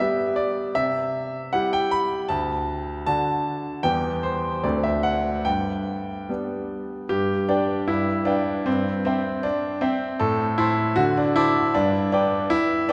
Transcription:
0.00 0.72 G3 soft
0.00 0.73 B3 soft
0.00 0.73 G4 soft
0.00 0.37 E5 medium
0.36 0.75 D5 medium
0.75 1.51 C3 medium
0.75 1.53 E5 medium
1.53 2.26 G3 soft
1.53 2.27 E4 soft
1.53 2.27 G4 soft
1.53 1.72 F#5 medium
1.73 1.92 G5 medium
1.91 2.30 B5 medium
2.29 3.04 D2 medium
2.29 3.05 A5 medium
3.06 3.81 D3 soft
3.06 3.81 D4 soft
3.06 3.81 F#4 soft
3.06 3.85 A5 medium
3.83 4.61 E2 medium
3.83 4.59 G3 soft
3.83 4.60 B3 soft
3.83 4.60 G4 soft
3.83 4.23 G5 medium
4.23 4.63 C5 medium
4.63 5.43 D2 medium
4.63 5.42 A3 soft
4.63 5.42 C4 soft
4.63 5.42 D4 soft
4.63 4.84 D5 medium
4.84 5.04 E5 medium
5.03 5.45 F#5 medium
5.45 6.26 G2 soft
5.45 6.28 G5 medium
6.29 7.07 G3 soft
6.29 7.07 B3 soft
6.29 7.07 D4 soft
7.09 7.48 G2 medium
7.09 7.49 G4 medium
7.49 7.88 D4 medium
7.49 7.84 B4 soft
7.49 7.85 D5 soft
7.49 7.85 G5 soft
7.88 8.26 G2 medium
7.88 8.27 E4 medium
8.25 8.66 D4 medium
8.25 8.62 B4 soft
8.25 8.63 F5 soft
8.25 8.63 G5 soft
8.66 9.04 G2 medium
8.66 9.03 C4 medium
9.05 9.44 C4 medium
9.05 9.78 C5 soft
9.05 9.79 E5 soft
9.05 9.79 G5 soft
9.43 9.82 D4 medium
9.81 10.20 C4 medium
9.81 10.16 C5 soft
9.81 10.16 E5 soft
9.81 10.17 G5 soft
10.19 10.58 A2 medium
10.19 10.58 A4 medium
10.58 10.97 E4 medium
10.58 10.94 C5 soft
10.58 10.94 A5 medium
10.58 10.94 C6 medium
10.96 11.34 D3 medium
10.96 11.16 F#4 medium
11.17 11.36 D4 medium
11.36 11.74 E4 medium
11.36 11.70 C5 soft
11.36 11.70 A5 medium
11.36 11.71 D6 medium
11.74 12.11 G2 medium
11.74 12.11 D4 medium
12.12 12.50 D4 medium
12.12 12.85 B4 soft
12.12 12.85 G5 soft
12.12 12.85 D6 medium
12.50 12.88 E4 loud
12.89 12.93 D4 loud
12.89 12.93 B4 medium

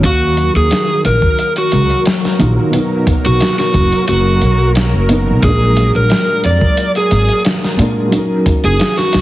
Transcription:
0.00 0.51 D#2 medium
0.00 2.34 D#3 medium
0.00 9.21 F#3 medium
0.00 2.35 D#4 medium
0.00 9.21 A#4 medium
0.00 kick loud
0.00 closed hi-hat medium
0.05 0.50 F#4 medium
0.05 2.38 F#4 medium
0.05 2.37 F5 medium
0.37 closed hi-hat medium
0.55 0.69 D#2 medium
0.55 1.01 G#4 medium
0.71 snare loud
0.71 closed hi-hat medium
1.05 1.20 A#1 medium
1.05 1.51 A#4 medium
1.05 closed hi-hat medium
1.22 kick medium
1.39 closed hi-hat medium
1.56 2.02 F#4 medium
1.56 closed hi-hat soft
1.72 1.88 C#2 medium
1.72 closed hi-hat medium
1.90 closed hi-hat soft
2.06 snare loud
2.06 closed hi-hat medium
2.25 snare soft
2.39 2.55 A#1 loud
2.39 2.69 D#3 medium
2.39 2.69 D#4 medium
2.39 2.70 F4 medium
2.39 2.71 F#4 medium
2.39 closed hi-hat medium
2.70 5.04 B2 medium
2.70 5.05 B3 medium
2.70 closed hi-hat medium
2.76 5.07 D#4 medium
2.76 5.08 A#4 medium
3.07 kick medium
3.07 closed hi-hat medium
3.25 3.39 B1 medium
3.25 3.56 F#4 medium
3.25 closed hi-hat soft
3.41 snare loud
3.41 closed hi-hat medium
3.59 4.04 F#4 medium
3.59 snare soft
3.74 3.90 F#1 medium
3.74 kick medium
3.74 closed hi-hat medium
3.92 closed hi-hat soft
4.08 4.38 F#1 medium
4.08 4.69 F#4 medium
4.08 closed hi-hat medium
4.42 4.90 B1 loud
4.42 closed hi-hat medium
4.75 snare loud
4.75 closed hi-hat medium
4.93 5.28 F#1 medium
5.08 5.39 B2 medium
5.08 5.39 B3 medium
5.08 5.40 D#4 medium
5.08 closed hi-hat medium
5.13 5.41 A#4 medium
5.27 5.41 B1 medium
5.40 5.91 A#1 medium
5.40 7.73 A#2 medium
5.40 7.75 G#3 medium
5.40 kick loud
5.40 closed hi-hat medium
5.44 7.76 D4 medium
5.44 5.90 G#4 medium
5.49 7.78 A#4 medium
5.77 closed hi-hat medium
5.94 6.08 A#1 medium
5.94 6.40 A#4 medium
6.10 snare loud
6.10 closed hi-hat medium
6.44 6.60 F2 medium
6.44 6.91 D5 loud
6.44 closed hi-hat medium
6.61 kick medium
6.77 closed hi-hat medium
6.95 7.41 G#4 loud
6.95 closed hi-hat soft
7.11 7.27 G#1 loud
7.11 closed hi-hat medium
7.29 closed hi-hat soft
7.45 snare loud
7.45 closed hi-hat medium
7.64 snare soft
7.77 8.08 A#2 medium
7.77 7.94 A#2 loud
7.77 8.09 G#3 medium
7.77 8.09 D4 medium
7.77 closed hi-hat medium
7.82 8.10 A#4 medium
8.09 9.21 F#3 medium
8.09 9.21 C#4 medium
8.09 closed hi-hat medium
8.15 9.21 D#4 medium
8.15 9.21 A#4 medium
8.46 kick medium
8.46 closed hi-hat medium
8.64 8.78 F#1 medium
8.64 8.95 G#4 medium
8.64 closed hi-hat soft
8.79 snare loud
8.79 closed hi-hat medium
8.98 9.21 F#4 medium
8.98 snare soft
9.13 9.21 C#2 medium
9.13 snare medium
9.13 closed hi-hat medium

